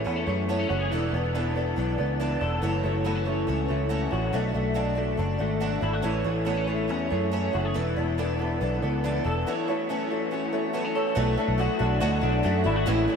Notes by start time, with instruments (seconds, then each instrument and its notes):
Already playing: clean electric guitar E3 A3
0.04 picked electric bass E2, clean electric guitar B3, twelve-string acoustic guitar C#4 E4 G#4 C#5
0.16 clean electric guitar C#4
0.27 picked electric bass F#2, clean electric guitar A3, twelve-string acoustic guitar E4 G#4 C#5
0.48 twelve-string acoustic guitar A3 C#4 E4 G#4 C#5, clean electric guitar B3
0.59 clean electric guitar C#4
0.69 picked electric bass F#1, twelve-string acoustic guitar E4 G#4 C#5, clean electric guitar F#4
0.80 clean electric guitar G#4
0.91 picked electric bass E1, clean electric guitar E3, twelve-string acoustic guitar E3 B3 D4 A4 D5
1.13 picked electric bass E1, clean electric guitar B3, twelve-string acoustic guitar D4 A4 D5
1.34 twelve-string acoustic guitar E3 B3 D4 A4 D5, clean electric guitar D4
1.56 clean electric guitar B3, twelve-string acoustic guitar D4 A4 D5
1.76 picked electric bass B1, twelve-string acoustic guitar B3 D4 A4 D5, clean electric guitar D4
1.98 picked electric bass C#2, clean electric guitar B3, twelve-string acoustic guitar D4 A4 D5
2.20 twelve-string acoustic guitar E3 B3 D4 A4 D5, clean electric guitar D4
2.41 picked electric bass E1, twelve-string acoustic guitar D4 A4 D5, clean electric guitar A4
2.62 picked electric bass F#1, clean electric guitar E3, twelve-string acoustic guitar F#3 A3 E4 F#4 C#5
2.84 picked electric bass F#1, clean electric guitar A3, twelve-string acoustic guitar E4 F#4 C#5
3.04 twelve-string acoustic guitar F#3 A3 E4 F#4 C#5, clean electric guitar B3
3.16 clean electric guitar C#4
3.25 clean electric guitar A3, twelve-string acoustic guitar E4 F#4 C#5
3.47 picked electric bass C#2, twelve-string acoustic guitar A3 E4 F#4 C#5, clean electric guitar C#4
3.68 picked electric bass C#2, clean electric guitar A3, twelve-string acoustic guitar E4 F#4 C#5
3.89 twelve-string acoustic guitar F#3 A3 E4 F#4 C#5, clean electric guitar C#4
4.11 picked electric bass A1, twelve-string acoustic guitar E4 F#4 C#5, clean electric guitar F#4
4.33 picked electric bass B1, twelve-string acoustic guitar B2 F#3 A3 D4 F#4 D5, clean electric guitar A3
4.53 picked electric bass B1, clean electric guitar A3, twelve-string acoustic guitar A3 D4 F#4 D5
4.74 twelve-string acoustic guitar B2 F#3 A3 D4 F#4 D5, clean electric guitar D4
4.95 clean electric guitar A3, twelve-string acoustic guitar A3 D4 F#4 D5
5.17 picked electric bass F#1, twelve-string acoustic guitar A3 D4 F#4 D5, clean electric guitar D4
5.38 picked electric bass G#1, clean electric guitar A3, twelve-string acoustic guitar A3 D4 F#4 D5
5.60 twelve-string acoustic guitar B2 F#3 A3 D4 F#4 D5, clean electric guitar D4
5.81 picked electric bass G#1, twelve-string acoustic guitar A3 D4 F#4 D5, clean electric guitar E4
5.93 clean electric guitar F#4
6.02 picked electric bass A1, clean electric guitar E3, twelve-string acoustic guitar A3 C#4 E4 G#4 C#5
6.24 picked electric bass A1, clean electric guitar A3, twelve-string acoustic guitar E4 G#4 C#5
6.45 twelve-string acoustic guitar A3 C#4 E4 G#4 C#5, clean electric guitar B3
6.57 clean electric guitar C#4
6.67 clean electric guitar A3, twelve-string acoustic guitar E4 G#4 C#5
6.88 picked electric bass E2, twelve-string acoustic guitar C#4 E4 G#4 C#5, clean electric guitar C#4
7.10 picked electric bass F#2, clean electric guitar A3, twelve-string acoustic guitar E4 G#4 C#5
7.31 twelve-string acoustic guitar A3 C#4 E4 G#4 C#5, clean electric guitar C#4
7.53 picked electric bass F#1, twelve-string acoustic guitar E4 G#4 C#5, clean electric guitar F#4
7.65 clean electric guitar G#4
7.74 picked electric bass E1, twelve-string acoustic guitar E3 B3 D4 A4 D5, clean electric guitar E3
7.96 picked electric bass E1, clean electric guitar B3, twelve-string acoustic guitar D4 A4 D5
8.18 twelve-string acoustic guitar E3 B3 D4 A4 D5, clean electric guitar D4
8.39 clean electric guitar B3, twelve-string acoustic guitar D4 A4 D5
8.61 picked electric bass B1, twelve-string acoustic guitar B3 D4 A4 D5, clean electric guitar D4
8.82 picked electric bass C#2, clean electric guitar B3, twelve-string acoustic guitar D4 A4 D5
9.04 twelve-string acoustic guitar E3 B3 D4 A4 D5, clean electric guitar D4
9.24 picked electric bass E1, twelve-string acoustic guitar D4 A4 D5, clean electric guitar A4
9.47 clean electric guitar E3, twelve-string acoustic guitar F#3 A3 E4 F#4 C#5
9.68 clean electric guitar A3, twelve-string acoustic guitar E4 F#4 C#5
9.89 twelve-string acoustic guitar F#3 A3 E4 F#4 C#5, clean electric guitar C#4
10.10 clean electric guitar A3, twelve-string acoustic guitar E4 F#4 C#5
10.31 twelve-string acoustic guitar A3 E4 F#4 C#5, clean electric guitar C#4
10.53 clean electric guitar A3, twelve-string acoustic guitar E4 F#4 C#5
10.73 twelve-string acoustic guitar F#3 A3 E4 F#4 C#5, clean electric guitar B3
10.85 clean electric guitar C#4
10.95 twelve-string acoustic guitar E4 F#4 C#5, clean electric guitar A4
11.15 picked electric bass B1, twelve-string acoustic guitar B2 F#3 A3 D4 F#4, clean electric guitar A3
11.37 clean electric guitar A3, twelve-string acoustic guitar A3 D4 F#4
11.48 picked electric bass B1
11.58 twelve-string acoustic guitar F#3 A3 D4 F#4, clean electric guitar F#4
11.79 picked electric bass B1, twelve-string acoustic guitar A3 D4 F#4, clean electric guitar D4
12.00 picked electric bass D2, twelve-string acoustic guitar B2 F#3 A3 D4 F#4, clean electric guitar F#4
12.21 picked electric bass B1, twelve-string acoustic guitar A3 D4 F#4, clean electric guitar D4
12.43 picked electric bass F#2, twelve-string acoustic guitar F#3 A3 D4 F#4, clean electric guitar A3
12.64 picked electric bass G#1, twelve-string acoustic guitar A3 D4 F#4, clean electric guitar E4
12.76 clean electric guitar F#4
12.86 picked electric bass A1, twelve-string acoustic guitar A2 E3 G#3 C#4 E4, clean electric guitar E3
13.08 twelve-string acoustic guitar G#3 C#4 E4, clean electric guitar A3